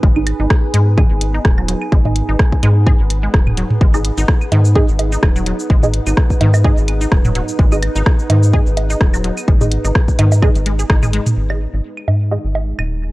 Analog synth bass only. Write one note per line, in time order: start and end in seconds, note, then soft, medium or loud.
0.03 0.33 G#1 medium
0.40 0.47 G#1 loud
0.74 1.04 G#2 medium
1.11 1.39 G#1 medium
1.45 1.75 D#1 loud
1.92 2.22 G#1 medium
2.29 2.36 G#1 loud
2.63 2.93 G#2 medium
3.00 3.28 G#1 medium
3.34 3.64 D#1 medium
3.81 4.11 G#1 medium
4.18 4.25 G#1 loud
4.52 4.82 G#2 medium
4.89 5.17 G#1 medium
5.23 5.53 D#1 loud
5.70 6.00 G#1 medium
6.07 6.14 G#1 loud
6.41 6.71 G#2 medium
6.78 7.06 G#1 medium
7.12 7.42 D#1 loud
7.59 7.89 G#1 medium
7.96 8.03 G#1 loud
8.30 8.60 G#2 medium
8.67 8.95 G#1 medium
9.01 9.31 D#1 loud
9.48 9.78 G#1 medium
9.85 9.92 G#1 loud
10.19 10.49 G#2 medium
10.56 10.84 G#1 medium
10.90 11.20 G#1 medium
11.37 11.67 G#1 medium
11.74 11.81 G#1 loud
12.08 12.38 G#2 medium
12.44 12.73 G#1 medium
12.79 13.09 D#1 loud